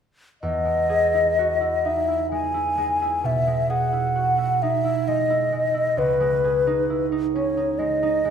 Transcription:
0.42 E2 D#5
0.65 G#3
0.89 G#4
1.14 E4
1.39 F#4
1.61 E4
1.85 D#4 E5
2.08 E4
2.32 G#3 G#5
2.54 E4
2.77 G#3
3.02 E4
3.24 B2 E5
3.47 G#3
3.70 G#4 F#5
3.92 E4
4.16 F#4
4.38 E4
4.62 D#4 E5
4.85 E4
5.08 G#3 D#5
5.30 E4
5.52 G#3
5.74 E4
5.97 C#2 B4
6.20 G#3
6.44 G#4
6.67 D#4
6.90 E4
7.12 D#4
7.35 C#4 C#5
7.57 D#4
7.79 G#3 D#5
8.03 D#4
8.25 G#3

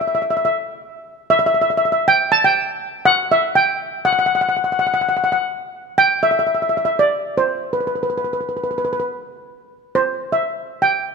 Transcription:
0.01 E5
0.07 E5
0.15 E5
0.22 E5
0.30 E5
0.37 E5
0.45 E5
1.30 E5
1.39 E5
1.46 E5
1.54 E5
1.62 E5
1.70 E5
1.77 E5
1.85 E5
1.92 E5
2.08 G5
2.32 A5
2.44 G5
3.05 F#5
3.32 E5
3.55 G5
4.05 F#5
4.13 F#5
4.19 F#5
4.26 F#5
4.35 F#5
4.41 F#5
4.49 F#5
4.57 F#5
4.64 F#5
4.72 F#5
4.79 F#5
4.87 F#5
4.94 F#5
5.01 F#5
5.09 F#5
5.17 F#5
5.24 F#5
5.32 F#5
5.98 G5
6.23 E5
6.31 E5
6.39 E5
6.47 E5
6.55 E5
6.62 E5
6.69 E5
6.77 E5
6.85 E5
6.99 D5
7.38 C5
7.73 B4
7.80 B4
7.87 B4
7.96 B4
8.03 B4
8.10 B4
8.18 B4
8.25 B4
8.33 B4
8.41 B4
8.49 B4
8.57 B4
8.63 B4
8.71 B4
8.78 B4
8.85 B4
8.93 B4
9.00 B4
9.95 C5
10.32 E5
10.82 G5

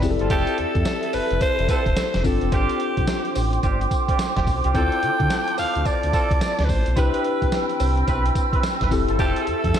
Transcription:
Already playing: D5
0.02 F1 C4 E4 G4 G#4 A4 E5, kick, open hi-hat, tambourine
0.11 A4
0.19 G1 C4 E4 F4 A4, closed hi-hat
0.30 F1 C4 E4 F4 G4 A4, kick, closed hi-hat, tambourine, cowbell
0.47 closed hi-hat
0.58 F2 A4, closed hi-hat
0.75 F2, kick, closed hi-hat
0.85 snare, closed hi-hat, tambourine, cowbell
1.03 closed hi-hat
1.13 F1 B4, open hi-hat, tambourine, cowbell
1.31 F1, closed hi-hat
1.41 F1 C5, kick, closed hi-hat, tambourine, cowbell
1.59 F1, closed hi-hat
1.69 C4 E4 F4 A4 C5, kick, closed hi-hat, tambourine
1.86 E1, kick, closed hi-hat
1.96 snare, closed hi-hat, tambourine, cowbell
2.14 F1, snare, closed hi-hat
2.24 G1 C4 D4 F4 A4 C5 G5 D6, kick, open hi-hat, tambourine
2.41 F1, closed hi-hat
2.52 G1 C4 D4 F4 G4, kick, closed hi-hat, tambourine, cowbell
2.69 closed hi-hat
2.80 closed hi-hat
2.97 C2, kick, closed hi-hat
3.07 snare, closed hi-hat, tambourine, cowbell
3.25 closed hi-hat
3.35 A1, open hi-hat, tambourine, cowbell
3.53 closed hi-hat
3.63 G1 C4 D4 F4 G4, kick, closed hi-hat, tambourine, cowbell
3.81 closed hi-hat
3.91 kick, closed hi-hat, tambourine
4.08 C4 D4 F4 G4, kick, closed hi-hat
4.19 snare, closed hi-hat, tambourine, cowbell
4.36 F1 C4 D4 F4 G4, kick, snare, closed hi-hat
4.47 B1, kick, open hi-hat, tambourine
4.64 C2 C4 D4 F4 G4, closed hi-hat
4.74 D2 C4 D4 E4 F4 A4 G5 A5, kick, closed hi-hat, tambourine, cowbell
4.92 closed hi-hat
5.03 D3, closed hi-hat
5.20 D3, kick, closed hi-hat
5.30 snare, closed hi-hat, tambourine, cowbell
5.48 closed hi-hat
5.58 D2 F5, open hi-hat, tambourine, cowbell
5.75 D2, closed hi-hat
5.85 D2 D5, kick, closed hi-hat, tambourine, cowbell
6.03 D2, closed hi-hat
6.13 C4 D4 F4 A4, kick, closed hi-hat, tambourine
6.31 C2, kick, closed hi-hat
6.41 snare, closed hi-hat, tambourine, cowbell
6.59 D2, snare, closed hi-hat
6.64 B4
6.69 A1 C5, kick, open hi-hat, tambourine
6.86 B1, closed hi-hat
6.92 C4 D4 C5
6.96 C2 C4 E4 G4 B4 G5 B5 E6, kick, closed hi-hat, tambourine, cowbell
7.14 closed hi-hat
7.25 closed hi-hat
7.42 B1, kick, closed hi-hat
7.52 snare, closed hi-hat, tambourine, cowbell
7.69 closed hi-hat
7.80 C2, open hi-hat, tambourine, cowbell
7.97 closed hi-hat
8.07 B1 C4 E4 G4 B4, kick, closed hi-hat, tambourine, cowbell
8.26 closed hi-hat
8.35 kick, closed hi-hat, tambourine
8.53 C4 E4 G4 B4, kick, closed hi-hat
8.63 snare, closed hi-hat, tambourine, cowbell
8.81 G1 C4 E4 G4 B4, kick, snare, closed hi-hat
8.91 F1 C4 E4 G4 A4 E5 A5, kick, open hi-hat, tambourine
9.08 G1 C4 E4 F4 A4, closed hi-hat
9.19 F1 C4 E4 F4 G4 A4, kick, closed hi-hat, tambourine, cowbell
9.36 closed hi-hat
9.42 G#4
9.47 F2 A4, closed hi-hat
9.64 F2, kick, closed hi-hat
9.74 snare, closed hi-hat, tambourine, cowbell

